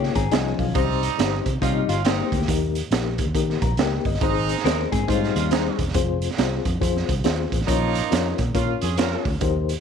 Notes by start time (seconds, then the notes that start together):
Already playing: A#3 D#4 F4 G4 G#4 C#5
0.03 snare
0.15 G#1 C4 G#4 A#5, kick, closed hi-hat
0.31 C2 F3 C#4 D#4 F4 G#4 D#5 G#5, snare, closed hi-hat
0.59 B1 F5, kick, open hi-hat
0.74 C2 G3 C4 D#4 G4 C5, kick, closed hi-hat
1.03 closed hi-hat
1.19 G1 C4 D#4 G4 C5, snare, closed hi-hat
1.46 C3, kick, closed hi-hat
1.61 C3 G3 A#3 C4 C#4 D#4 F4 G4 D#5, kick, closed hi-hat
1.88 G1 A#3 C#4 F4, closed hi-hat
2.05 G3 A#3 C4 D#4 G4 C5, snare, closed hi-hat
2.32 D2, kick, closed hi-hat
2.42 snare
2.48 D#2 A#3 D#4 G4 A#4, kick, closed hi-hat
2.75 closed hi-hat
2.91 A#1 A#3 D#4 G4 A#4, snare, closed hi-hat
3.18 kick, closed hi-hat
3.26 D#2
3.35 D#3 A#3 D#4 G4 A#4, kick, closed hi-hat
3.50 snare
3.62 A#1 A#5, kick, closed hi-hat
3.77 C#2 A#3 D#4 G4 A#4 G5, snare, closed hi-hat
4.05 G1 D#5, kick, open hi-hat
4.14 snare
4.21 G#1 G#3 C4 D#4 G#4 C5, kick, closed hi-hat
4.49 closed hi-hat
4.58 snare
4.64 D#2 C4 D#4 G#4 A#4 C5, snare, closed hi-hat
4.92 G#2 C4 G#4, kick, closed hi-hat
5.08 G#2 G3 A#3 C4 C#4 D#4 F4 G#4 C5, kick, closed hi-hat
5.23 snare
5.36 D#2 A#3 C#4 F4, closed hi-hat
5.51 G#3 C4 D#4 G#4 C5, snare, closed hi-hat
5.79 E1, kick, closed hi-hat
5.88 snare
5.94 F1 C4 F4 G#4 C5, kick, closed hi-hat
6.22 closed hi-hat
6.31 snare
6.37 C2 C4 F4 G#4 C5, snare, closed hi-hat
6.65 F2, kick, closed hi-hat
6.81 F2 C4 F4 G#4 C5, kick, closed hi-hat
6.97 snare
7.09 C2, kick, closed hi-hat
7.24 D#2 C4 F4 G#4 C5, snare, closed hi-hat
7.52 A1, kick, closed hi-hat
7.61 snare
7.67 A#1 F3 A#3 C#4 D#4 F4 A#4 C#5, kick, closed hi-hat
7.95 closed hi-hat
8.11 F2 C#4 F4 A#4 C#5, snare, closed hi-hat
8.38 A#2, kick, closed hi-hat
8.54 A#2 A#3 C#4 F4 A#4 C#5, kick, closed hi-hat
8.81 F2 C#4 F4 G#4, closed hi-hat
8.97 C#4 F4 A#4 C#5, snare, closed hi-hat
9.25 D2, kick, open hi-hat
9.41 D#2 D#4 G4 A#4 C5, kick, closed hi-hat
9.69 closed hi-hat